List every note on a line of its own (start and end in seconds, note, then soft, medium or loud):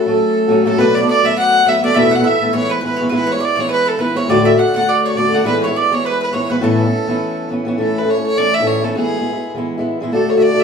0.00 0.66 A4 medium
0.06 0.47 F#3 medium
0.06 0.48 A3 medium
0.06 0.49 C#4 medium
0.06 0.50 F#4 medium
0.48 0.63 F#3 medium
0.48 0.65 A3 medium
0.48 0.66 C#4 medium
0.48 0.66 F#4 medium
0.64 0.77 F#3 medium
0.64 0.78 A3 medium
0.64 0.79 C#4 medium
0.64 0.79 F#4 medium
0.64 0.78 A4 medium
0.64 0.80 A4 medium
0.77 1.01 B2 medium
0.77 1.01 F#3 medium
0.77 1.01 A3 loud
0.77 1.01 B3 medium
0.77 0.99 D4 medium
0.77 0.97 B4 loud
0.77 0.96 B4 medium
0.95 1.08 D5 medium
1.00 1.24 A3 soft
1.00 1.23 B3 soft
1.00 1.24 D4 medium
1.09 1.27 D5 loud
1.09 1.26 D5 medium
1.23 1.64 F#3 medium
1.23 1.66 A3 medium
1.23 1.66 B3 medium
1.23 1.67 D4 medium
1.23 1.37 E5 loud
1.23 1.37 E5 medium
1.38 1.65 F#5 medium
1.38 1.70 F#5 loud
1.65 1.80 F#3 medium
1.65 1.83 A3 medium
1.65 1.81 B3 medium
1.65 1.83 D4 medium
1.65 1.83 E5 medium
1.65 1.84 E5 loud
1.81 1.94 F#3 medium
1.81 1.94 A3 medium
1.81 1.95 B3 medium
1.81 1.96 D4 medium
1.81 1.95 D5 medium
1.81 1.99 D5 loud
1.94 2.18 E2 medium
1.94 2.18 B2 medium
1.94 2.18 E3 medium
1.94 2.18 A3 medium
1.94 2.17 B3 medium
1.94 2.16 E4 medium
1.94 2.10 E5 medium
1.94 2.17 E5 loud
2.11 2.23 F#5 medium
2.11 2.28 F#5 medium
2.17 2.39 E3 soft
2.17 2.40 A3 soft
2.17 2.41 B3 medium
2.17 2.41 E4 medium
2.24 2.51 E5 medium
2.24 2.55 E5 medium
2.40 2.52 E3 medium
2.40 2.53 A3 medium
2.40 2.53 B3 medium
2.40 2.54 E4 medium
2.53 2.81 E3 medium
2.53 2.82 G#3 medium
2.53 2.83 B3 medium
2.53 2.84 E4 medium
2.53 2.69 C#5 medium
2.53 2.73 C#5 loud
2.69 2.80 B4 medium
2.69 2.84 B4 medium
2.81 2.97 E3 medium
2.81 2.99 G#3 medium
2.81 3.00 B3 medium
2.81 2.96 B4 medium
2.85 3.01 E4 medium
2.85 3.11 B4 medium
2.97 3.09 E3 medium
2.97 3.11 G#3 medium
2.97 3.09 C#5 medium
3.01 3.11 B3 medium
3.01 3.12 E4 medium
3.09 3.34 E3 medium
3.09 3.35 G#3 medium
3.09 3.35 B3 medium
3.09 3.33 E4 medium
3.09 3.26 B4 medium
3.14 3.33 B4 loud
3.27 3.40 C#5 medium
3.32 3.58 E4 medium
3.32 3.46 C#5 medium
3.36 3.57 G#3 soft
3.36 3.58 B3 soft
3.40 3.56 D5 medium
3.45 3.62 D5 medium
3.56 3.96 E3 medium
3.56 3.98 G#3 medium
3.56 3.98 B3 medium
3.56 3.68 C#5 medium
3.60 4.00 E4 medium
3.60 3.71 C#5 loud
3.69 3.85 B4 medium
3.69 3.90 B4 loud
3.86 3.98 A4 medium
3.86 4.02 A4 medium
3.98 4.14 E3 medium
3.98 4.14 G#3 medium
3.98 4.16 B3 medium
3.98 4.17 E4 medium
3.98 4.16 B4 medium
3.98 4.18 B4 medium
4.15 4.28 E3 medium
4.15 4.29 G#3 medium
4.15 4.29 B3 medium
4.15 4.30 E4 medium
4.15 4.28 C#5 medium
4.15 4.32 C#5 medium
4.28 4.52 D2 medium
4.28 4.52 A2 medium
4.28 4.52 D3 medium
4.28 4.53 A3 medium
4.28 4.51 D4 medium
4.28 4.50 F#4 medium
4.28 4.45 D5 medium
4.28 4.47 D5 medium
4.45 4.57 E5 medium
4.45 4.59 E5 medium
4.51 4.73 D3 soft
4.51 4.74 A3 medium
4.51 4.75 D4 soft
4.51 4.75 F#4 soft
4.58 4.75 F#5 medium
4.58 4.74 F#5 medium
4.74 5.14 D3 medium
4.74 5.15 A3 medium
4.74 5.16 D4 medium
4.74 5.17 F#4 medium
4.74 4.90 F#5 loud
4.74 4.89 F#5 medium
4.89 5.04 D5 medium
5.04 5.19 C#5 medium
5.04 5.17 C#5 medium
5.15 5.31 D3 medium
5.15 5.32 A3 medium
5.15 5.33 D4 medium
5.15 5.34 F#4 medium
5.15 5.36 D5 medium
5.15 5.45 D5 medium
5.32 5.44 D3 medium
5.32 5.45 A3 medium
5.32 5.46 D4 medium
5.32 5.46 F#4 medium
5.32 5.45 F#5 medium
5.44 5.68 E3 medium
5.44 5.69 G#3 medium
5.44 5.67 B3 medium
5.44 5.66 E4 loud
5.44 5.61 B4 medium
5.44 5.62 B4 medium
5.63 5.79 C#5 medium
5.63 5.75 C#5 medium
5.67 5.90 G#3 soft
5.67 5.91 B3 medium
5.67 5.91 E4 medium
5.76 5.91 D5 medium
5.76 5.96 D5 medium
5.90 6.31 E3 medium
5.90 6.32 G#3 medium
5.90 6.33 B3 medium
5.90 6.35 E4 medium
5.90 6.05 C#5 medium
5.94 6.06 C#5 medium
6.05 6.21 B4 loud
6.05 6.19 B4 medium
6.21 6.32 B4 medium
6.21 6.35 B4 medium
6.32 6.47 E3 medium
6.32 6.49 G#3 medium
6.32 6.50 B3 medium
6.32 6.51 E4 medium
6.32 6.49 C#5 medium
6.32 6.53 C#5 medium
6.48 6.60 E3 medium
6.48 6.61 G#3 medium
6.48 6.61 B3 medium
6.48 6.62 E4 medium
6.48 6.62 B4 medium
6.48 6.64 B4 medium
6.61 6.85 A2 medium
6.61 6.85 E3 medium
6.61 6.85 B3 medium
6.61 6.85 C#4 medium
6.61 6.83 E4 loud
6.61 7.51 A4 medium
6.61 7.47 A4 medium
6.84 7.07 B3 soft
6.84 7.08 C#4 medium
6.84 7.08 E4 medium
7.07 7.49 E3 medium
7.07 7.49 B3 medium
7.07 7.50 C#4 medium
7.07 7.52 E4 medium
7.49 7.64 E3 medium
7.49 7.65 B3 medium
7.49 7.67 C#4 medium
7.49 7.67 E4 medium
7.65 7.76 E3 medium
7.65 7.78 B3 medium
7.65 7.79 C#4 medium
7.65 7.80 E4 medium
7.77 8.02 E3 medium
7.77 8.02 A3 medium
7.77 8.02 C#4 medium
7.77 8.00 E4 medium
7.83 8.00 A4 medium
7.98 8.15 E4 soft
7.98 8.11 B4 medium
8.03 8.18 A3 soft
8.03 8.16 C#4 soft
8.10 8.26 C#5 medium
8.16 8.36 A3 soft
8.16 8.38 C#4 soft
8.16 8.38 E4 soft
8.26 8.39 C#5 loud
8.37 8.61 E3 medium
8.37 8.60 A3 medium
8.37 8.60 C#4 medium
8.37 8.59 E4 medium
8.37 8.56 D5 loud
8.54 8.69 E5 medium
8.60 8.85 A2 medium
8.60 8.81 E3 medium
8.60 8.82 A3 medium
8.60 8.83 C#4 medium
8.60 8.84 E4 medium
8.67 8.86 C#5 medium
8.82 8.93 E3 medium
8.82 8.96 A3 medium
8.82 8.97 C#4 medium
8.82 8.97 E4 medium
8.82 8.96 A4 medium
8.94 9.18 E3 medium
8.94 9.20 G#3 medium
8.94 9.19 B3 medium
8.94 9.51 G#4 medium
8.98 9.17 E4 medium
9.18 9.35 G#3 soft
9.18 9.34 B3 soft
9.18 9.32 E4 medium
9.33 9.55 G#3 soft
9.33 9.56 B3 soft
9.33 9.54 E4 medium
9.55 9.78 E3 medium
9.55 9.78 G#3 medium
9.55 9.78 B3 medium
9.55 9.76 E4 medium
9.78 9.99 E3 medium
9.78 10.01 G#3 medium
9.78 10.01 B3 medium
9.78 10.01 E4 medium
10.00 10.11 E3 medium
10.00 10.12 G#3 medium
10.00 10.14 B3 medium
10.00 10.14 E4 medium
10.11 10.35 D3 medium
10.11 10.36 A3 medium
10.11 10.36 D4 medium
10.11 10.34 F#4 medium
10.11 10.32 A4 medium
10.30 10.38 C#5 medium
10.35 10.52 D3 soft
10.35 10.52 A3 medium
10.35 10.51 D4 soft
10.35 10.50 F#4 medium
10.35 10.44 E5 medium
10.42 10.61 D5 loud
10.51 10.64 D3 soft
10.51 10.64 A3 soft
10.51 10.64 D4 soft
10.51 10.64 F#4 medium
10.60 10.64 E5 loud